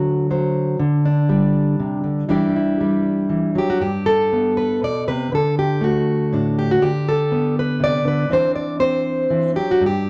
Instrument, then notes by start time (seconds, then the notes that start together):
steel-string acoustic guitar
Already playing: D3 F#3 F#4
0.31 F#3 C5
0.79 D3
1.06 D4
1.29 G3
1.80 C3
2.04 D3
2.29 E3 G3 D4 E4 G4
2.56 E4
2.81 G3
3.29 E3
3.55 F#3 G4
3.70 F#4
3.80 G2 G4
4.06 A4
4.33 B3
4.57 B4
4.83 B2 D5
5.08 C3 B4
5.32 D3 A4
5.59 G4
5.81 A3 F#4
6.33 A2 D4
6.59 G4
6.71 F#4
6.82 D3 G4
7.09 A4
7.32 B3
7.59 B4
7.80 C3 D5
8.05 D3 B4
8.29 E3 C4 D4 C5
8.56 D5
8.80 C4 C5
9.30 E3
9.56 F#3 G4
9.71 F#4
9.81 G2
9.86 G4